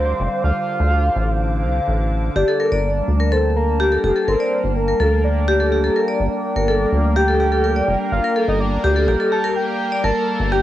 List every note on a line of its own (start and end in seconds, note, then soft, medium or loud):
0.00 0.14 D2 medium
0.00 2.37 D3 medium
0.00 0.44 G3 medium
0.00 1.21 G4 medium
0.00 0.44 A#4 medium
0.00 0.43 C5 loud
0.00 3.53 C5 medium
0.00 3.22 F5 medium
0.00 2.37 D6 medium
0.20 0.28 F1 loud
0.44 0.52 D2 loud
0.44 2.36 D3 medium
0.44 1.84 F5 loud
0.64 10.04 A5 medium
0.74 10.04 D4 medium
0.80 1.10 D2 medium
1.16 1.65 A1 medium
1.64 1.81 C2 loud
1.88 2.30 A1 medium
2.36 2.44 G1 loud
2.36 10.62 G3 medium
2.36 10.62 A#3 medium
2.36 2.46 G4 medium
2.36 10.62 A#4 medium
2.36 2.58 D5 loud
2.48 2.58 A4 medium
2.60 2.67 A#4 medium
2.60 3.34 D5 loud
2.72 3.02 G1 medium
2.72 2.79 D5 medium
2.80 10.62 G5 medium
3.08 3.98 D2 medium
3.20 3.27 A#4 medium
3.29 10.62 A#3 medium
3.29 3.39 A4 medium
3.29 3.56 C5 loud
3.56 4.01 A#4 medium
3.80 3.87 G4 loud
3.92 3.99 A4 medium
4.04 4.12 F1 loud
4.04 4.14 G4 medium
4.16 4.26 A4 medium
4.28 4.36 G1 loud
4.28 4.35 A#4 medium
4.28 4.73 C5 loud
4.40 4.47 D5 medium
4.64 4.94 G1 medium
4.76 5.21 A#4 medium
4.88 4.95 A#4 medium
5.00 5.90 D2 medium
5.00 5.07 A4 medium
5.24 5.92 D5 loud
5.48 5.55 G4 loud
5.60 5.67 A4 medium
5.72 5.82 G4 medium
5.84 5.94 A4 medium
5.96 6.03 A#4 medium
6.08 6.15 D5 medium
6.20 6.28 G1 loud
6.20 7.18 D5 loud
6.56 6.86 G1 medium
6.56 6.63 A#4 medium
6.68 6.75 A4 medium
6.92 7.82 D2 medium
7.16 7.23 G4 loud
7.16 8.11 G5 loud
7.28 7.35 A4 medium
7.40 7.50 G4 medium
7.52 7.62 A4 medium
7.64 7.71 A#4 medium
7.76 7.83 D5 medium
7.88 7.96 F1 loud
8.12 8.20 G1 loud
8.12 8.46 F5 loud
8.24 8.31 A#4 medium
8.36 8.43 A4 medium
8.48 8.78 G1 medium
8.48 8.62 D#5 medium
8.60 9.08 D5 medium
8.84 9.07 D2 medium
8.84 8.91 G4 loud
8.96 9.03 A4 medium
9.08 9.16 A#1 medium
9.08 9.18 G4 medium
9.20 9.30 A4 medium
9.32 9.39 G4 medium
9.32 9.54 A5 loud
9.44 9.51 A#4 loud
9.56 10.06 G5 loud
9.92 9.99 D5 medium
10.04 10.12 G1 loud
10.04 10.11 A#4 medium
10.04 10.54 A5 loud
10.36 10.62 G4 medium
10.40 10.62 G1 medium
10.52 10.59 G4 loud
10.52 10.62 D#5 medium
10.52 10.62 G5 loud